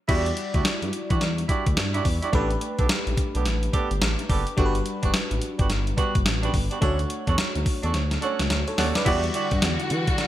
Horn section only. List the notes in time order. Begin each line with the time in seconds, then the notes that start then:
0.08 D4 E4 F#4 G4 D5
0.54 D4 E4 F#4 G4 D5
1.10 D4 E4 F#4 G4 D5
1.49 D4 E4 F#4 G4 D5
1.94 D4 E4 F#4 G4 D5
2.22 D4 E4 F#4 G4 D5
2.33 B3 D4 G4 A4 B4
2.78 B3 D4 G4 A4 B4
3.34 B3 D4 G4 A4 B4
3.73 B3 D4 G4 A4 B4
4.29 B3 D4 G4 A4 B4
4.57 B3 D4 F#4 G4 B4
5.03 B3 D4 F#4 G4 B4
5.59 B3 D4 F#4 G4 B4
5.97 B3 D4 F#4 G4 B4
6.43 B3 D4 F#4 G4 B4
6.71 B3 D4 F#4 G4 B4
6.81 C#4 D4 F#4 A4 C#5
7.27 C#4 D4 F#4 A4 C#5
7.83 C#4 D4 F#4 A4 C#5
8.22 C#4 D4 F#4 A4 C#5
8.78 C#4 D4 F#4 A4 C#5
9.06 D4 E4 F#4 G4 D5
9.34 D4 E4 F#4 G4 D5